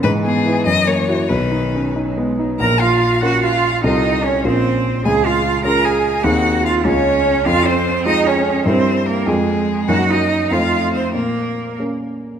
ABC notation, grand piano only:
X:1
M:6/8
L:1/8
Q:3/8=98
K:B
V:1 name="Grand piano"
G,, B, [EB] F,, A, [EF] | B,,, D C D B, D | [K:Bbm] B,,,3 [DFB]3 | [C,,CF=A]3 [B,,,DFB]3 |
D,,3 [DFA]3 | [E,,CEA]3 [D,,A,FA]3 | F,,3 [A,FA]3 | [=G,,C=EB]3 [F,,CFA]3 |
[G,,B,EB]3 [F,,=A,Ec]3 | B,,3 [B,DB]3 |]